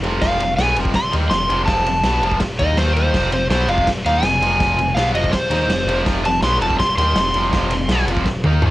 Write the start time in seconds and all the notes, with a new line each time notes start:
0.02 F1 F2 C3 F3, ride
0.21 F1 F2 C3 F3 F5, kick, snare, ride
0.39 F1 F2 C3, ride
0.57 B1 G#5, snare, ride
0.61 B2 F#3 B3
0.76 F1 F2 C3 F3, ride
0.85 kick
0.94 F1 C6, muted overdriven electric guitar stroke, kick, snare, ride
1.12 D#2 D#3 A#3 D#4, ride
1.30 F1 F2 C3 C6, snare, ride
1.49 F1 F2 C3 F3, ride
1.66 F1 F2 C3 A5, kick, snare, ride
1.70 F3
1.86 F1 F2 C3, ride
2.03 B1 B2 F#3 B3, snare, ride
2.22 F1 F2 C3 F3, ride
2.31 kick
2.40 F1, muted overdriven electric guitar stroke, kick, snare, ride
2.59 D#2 D#3 A#3 D#4 D#5, kick, ride
2.76 D#2 D#3 A#3 D#4 C5, snare, ride
2.96 C5, ride
3.13 F1 F2 C3 F3, kick, snare, crash
3.31 F1 F2 C3 C5, ride
3.50 B1 B2 F#3 B3 C5, snare, ride
3.68 F1 F2 C3 F3 F5, ride
3.78 kick
3.87 F1, muted overdriven electric guitar stroke, kick, snare, ride
4.05 D#2 D#3 A#3 D#4 F5, ride
4.23 F1 F2 C3 G#5, snare, ride
4.41 F1 F2 C3 F3, ride
4.59 F1 F2 C3 F3, kick, snare, ride
4.76 F1 F2 C3, ride
4.94 B1 B2 F#3 B3 F5, snare, ride
5.14 F1 F2 C3 F3 D#5, ride
5.24 kick
5.32 F1 C5, muted overdriven electric guitar stroke, kick, snare, ride
5.50 D#2 D#3 A#3 D#4, ride
5.68 F1 F2 C3, snare, ride
5.86 F1 F2 C3 F3, ride
6.05 F1 F2 C3 F3, kick, snare, ride
6.24 F1 F2 C3 A5, ride
6.42 B1 B2 F#3 B3 C6, snare, ride
6.60 F1 F2 C3 F3 A5, ride
6.70 kick
6.79 F1 C6, muted overdriven electric guitar stroke, kick, snare, ride
6.97 D#2 D#3 A#3 C6, ride
7.02 D#4
7.15 F1 F2, snare, ride
7.19 C3
7.34 F1 F2 C3, ride
7.38 F3
7.53 F1 F2 C3 F3, kick, snare, ride
7.70 F1 F2, ride
7.75 C3
7.88 B1 B2 F#3, snare, ride
7.93 B3
8.06 F1 F2, ride
8.11 C3 F3
8.17 kick
8.25 F1, muted overdriven electric guitar stroke, kick, snare
8.44 D#2 D#3 A#3 D#4, high tom
8.62 D#2 D#3 A#3, mid tom
8.66 D#4